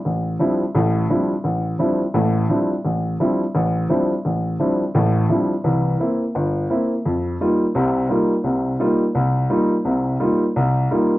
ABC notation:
X:1
M:4/4
L:1/8
Q:"Swing" 1/4=171
K:Dm
V:1 name="Upright piano"
A,,,2 [F,G,CDE] z [A,,,A,,]2 [F,G,CDE] z | A,,,2 [F,G,CDE] z [A,,,A,,]2 [F,G,CDE] z | A,,,2 [F,G,CDE] z A,,,2 [F,G,CDE] z | A,,,2 [F,G,CDE] z [A,,,A,,]2 [F,G,CDE] z |
[C,,E,]2 [B,CE] z G,,,2 [B,CE] z | [K:Cm] F,,2 [G,B,EF] z [C,,C,]2 [G,B,EF] z | [C,,C,]2 [G,B,EF] z C,,2 [G,B,EF] z | [C,,C,]2 [G,B,EF] z C,,2 [G,B,EF] z |]